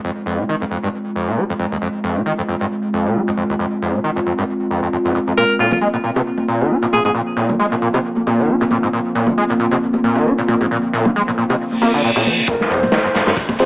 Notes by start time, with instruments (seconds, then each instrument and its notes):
Already playing: ambient pad G#3 C4 F4
0.04 acid bass F2
0.26 acid bass F2
0.39 acid bass A#2
0.49 acid bass D#3
0.62 acid bass F2
0.71 acid bass F2
0.83 acid bass G2
1.16 acid bass F2
1.28 acid bass A#2
1.37 acid bass G#3
1.50 acid bass F2
1.59 acid bass F2
1.72 acid bass D#2
1.82 acid bass F2
2.04 acid bass F2
2.17 acid bass A#2
2.26 acid bass D#3
2.38 acid bass F2
2.48 acid bass F2
2.61 acid bass G2
2.94 acid bass F2
3.06 acid bass A#2
3.16 acid bass G#3
3.28 acid bass F2
3.37 acid bass F2
3.50 acid bass D#2
3.59 acid bass F2
3.82 acid bass F2
3.94 acid bass A#2
4.04 acid bass D#3
4.16 acid bass F2
4.26 acid bass F2
4.38 acid bass G2
4.70 acid bass F2
4.83 acid bass F2
4.93 acid bass F2
5.05 acid bass F2
5.15 acid bass F2
5.27 acid bass F2
5.37 acid bass A#2, ambient pad D3 F3 A#3, alto saxophone A#4
5.59 acid bass A#2, alto saxophone F4
5.71 acid bass D#3, alto saxophone F4, high conga, low conga
5.81 acid bass G#3
5.93 acid bass A#2
6.04 acid bass A#2
6.16 acid bass C3, high bongo
6.38 high bongo, high conga
6.48 acid bass A#2
6.61 acid bass D#3, high bongo
6.70 acid bass D4
6.83 acid bass A#2
6.93 acid bass A#2, alto saxophone G#4, high conga
7.05 acid bass G#2, alto saxophone G#4, high bongo
7.14 acid bass A#2
7.37 acid bass A#2
7.49 acid bass D#3, high conga, low conga
7.59 acid bass G#3
7.72 acid bass A#2
7.82 acid bass A#2
7.94 acid bass C3, high bongo
8.17 high conga
8.27 acid bass A#2, high bongo
8.39 acid bass D#3
8.49 acid bass D4
8.61 acid bass A#2, high bongo
8.71 acid bass A#2, high bongo, high conga
8.83 acid bass G#2
8.93 acid bass A#2
9.15 acid bass A#2
9.27 acid bass D#3, high conga, low conga
9.38 acid bass G#3
9.50 acid bass A#2
9.60 acid bass A#2
9.71 acid bass C3, high bongo
9.94 high bongo, high conga
10.04 acid bass A#2
10.16 acid bass D#3, high bongo
10.26 acid bass D4
10.38 acid bass A#2
10.48 acid bass A#2, high conga
10.61 acid bass G#2, high bongo
10.71 acid bass A#2
10.93 acid bass A#2
11.05 acid bass D#3, high conga, low conga
11.16 acid bass G#3
11.28 acid bass A#2
11.38 acid bass A#2
11.50 acid bass C3, high bongo
11.60 reverse cymbal
11.72 high conga
11.82 acid bass A#3, high bongo
11.94 acid bass D3
12.04 acid bass A#2
12.16 acid bass A#2, high bongo
12.26 acid bass F3, high bongo, high conga
12.38 acid bass A#2
12.48 sub bass F1, acid bass F2, ambient pad G#3 C4 F4, alto saxophone A#4, kick, closed hi-hat, riser
12.61 snare
12.70 acid bass F2, alto saxophone C5, closed hi-hat
12.82 acid bass A#2, closed hi-hat, high conga, low conga
12.92 acid bass D#3, snare, closed hi-hat
13.04 acid bass F2
13.14 acid bass F2, snare, closed hi-hat
13.27 acid bass G2, snare, high bongo
13.37 sub bass F1, kick, closed hi-hat
13.49 kick, high bongo, high conga
13.59 acid bass F2, tine electric piano C4 F4 G#4 C5, closed hi-hat